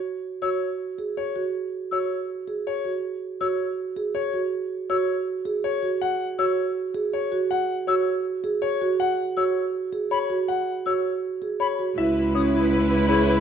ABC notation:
X:1
M:4/4
L:1/8
Q:1/4=161
K:C#phr
V:1 name="Flute"
z2 e' z4 z | z2 e' z4 z | z2 e' z4 z | z2 e' z4 z |
z2 e' z4 z | z2 e' z4 z | z2 e' z3 b z | z2 e' z3 b z |
[K:C#m] z2 d' z3 b z |]
V:2 name="Grand piano"
z2 c z3 c z | z2 c z3 c z | z2 c z3 c z | z2 c z3 c z |
f z c z3 c z | f z c z3 c z | f z c z3 c z | f z c z3 c z |
[K:C#m] e z c z3 c z |]
V:3 name="String section"
z8 | z8 | z8 | z8 |
z8 | z8 | z8 | z8 |
[K:C#m] [EB]8 |]
V:4 name="Marimba"
z2 F z2 G z F | z2 F z2 G z F | z2 F z2 G z F | z2 F z2 G z F |
z2 F z2 G z F | z2 F z2 G z F | z2 F z2 G z F | z2 F z2 G z F |
[K:C#m] E z C E z B G z |]
V:5 name="Clarinet"
z8 | z8 | z8 | z8 |
z8 | z8 | z8 | z8 |
[K:C#m] E E E E E E E E |]
V:6 name="Cello" clef=bass
z8 | z8 | z8 | z8 |
z8 | z8 | z8 | z8 |
[K:C#m] C,,8 |]